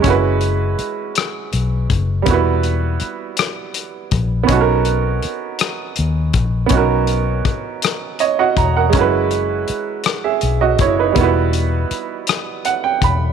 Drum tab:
HH |xxxxxx|xxxxxx|xxxxxx|xxxxxx|
SD |---r--|---r--|---r--|---r--|
BD |o----o|o----o|o----o|o-o--o|

HH |xxxxxx|xxxxxx|
SD |---r--|---r--|
BD |o----o|o----o|